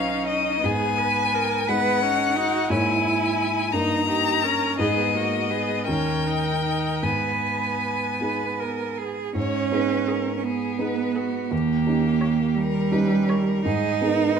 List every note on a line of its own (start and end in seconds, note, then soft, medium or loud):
0.00 0.66 B1 soft
0.00 0.60 F#3 soft
0.00 0.63 C#4 soft
0.00 0.60 D#4 soft
0.00 0.66 D#4 medium
0.00 0.60 B4 soft
0.00 0.26 F5 medium
0.27 0.66 D#5 medium
0.63 1.65 G#2 soft
0.63 1.66 B3 soft
0.63 1.00 G#4 medium
0.63 1.70 G#5 medium
0.98 1.36 B4 medium
1.34 1.69 A#4 medium
1.68 2.66 G#3 soft
1.68 2.04 B3 medium
1.68 2.67 D#4 soft
1.68 2.02 B4 medium
1.68 2.67 B4 soft
1.68 2.70 F#5 medium
2.02 2.38 C#4 medium
2.02 2.38 D#4 soft
2.36 2.71 D#4 medium
2.36 2.73 F#4 medium
2.70 3.70 G#2 soft
2.70 3.69 A#3 soft
2.70 3.73 E4 soft
2.70 3.69 E4 soft
2.70 3.76 E4 soft
2.70 3.69 C#5 soft
2.70 3.74 G#5 medium
3.73 4.76 G2 soft
3.73 4.75 A#3 soft
3.73 4.07 D#4 soft
3.73 4.75 D#4 soft
3.73 4.10 D#4 soft
3.73 4.76 A#4 soft
3.73 4.79 A#5 medium
4.08 4.45 D#4 soft
4.08 4.44 G4 soft
4.43 4.81 C#4 medium
4.43 4.78 A#4 soft
4.79 5.84 G#2 soft
4.79 5.84 B3 soft
4.79 5.17 B3 soft
4.79 5.84 D#4 soft
4.79 5.17 G#4 medium
4.79 5.84 G#4 soft
4.79 5.86 D#5 medium
5.15 5.53 A#3 soft
5.15 5.52 F#4 soft
5.51 5.87 B3 soft
5.51 5.86 G#4 soft
5.87 7.00 D#2 soft
5.87 6.99 C#4 soft
5.87 6.28 C#4 soft
5.87 6.99 D#4 soft
5.87 7.04 A#4 soft
5.87 7.00 A#4 soft
5.87 7.05 G5 medium
6.26 6.63 D#4 soft
6.64 7.04 D#4 soft
7.03 8.17 G#2 soft
7.03 9.15 B3 soft
7.03 8.13 B4 soft
7.03 8.99 G#5 medium
8.21 9.32 B3 soft
8.21 9.32 D#4 soft
8.21 9.33 G#4 soft
8.21 8.61 B4 soft
8.60 8.99 A#4 soft
8.98 9.35 G#4 soft
9.35 9.71 G#2 soft
9.35 10.33 C#4 medium
9.35 9.74 C#5 medium
9.72 10.76 B3 soft
9.72 10.76 D#4 soft
9.72 10.77 G#4 soft
9.72 10.11 B4 soft
10.07 10.35 G#4 soft
10.07 10.45 A#4 soft
10.37 10.45 C#4 soft
10.44 11.52 B3 medium
10.44 10.83 G#4 soft
10.79 11.47 B3 soft
10.79 11.47 D#4 soft
10.79 11.47 G#4 soft
10.79 11.19 B4 soft
11.16 11.54 F#4 soft
11.16 11.42 G#4 soft
11.51 11.85 D#2 soft
11.51 12.56 A#3 medium
11.51 12.59 G4 soft
11.86 12.88 C#4 soft
11.86 12.88 D#4 soft
11.86 12.88 G4 soft
12.21 12.47 C#5 soft
12.55 13.64 G3 medium
12.55 12.93 A#4 medium
12.92 13.62 C#4 soft
12.92 13.62 D#4 soft
12.92 13.62 G4 soft
12.92 13.32 B4 soft
13.29 13.68 A#4 soft
13.29 13.57 C#5 soft
13.65 14.00 G#2 soft
13.65 14.40 D#4 medium
13.65 14.05 G#4 medium
14.01 14.40 B3 soft
14.01 14.40 D#4 soft
14.01 14.40 G#4 soft
14.01 14.37 A#4 medium
14.36 14.40 B4 soft